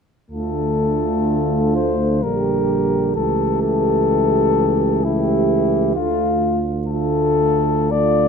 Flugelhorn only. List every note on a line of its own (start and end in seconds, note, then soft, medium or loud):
0.31 1.72 A4 soft
1.75 2.24 C5 soft
2.23 3.15 A#4 soft
3.16 3.61 A4 soft
3.62 5.06 A4 medium
5.04 5.94 E4 soft
5.95 6.60 F4 soft
6.87 7.93 A4 medium
7.91 8.28 D5 medium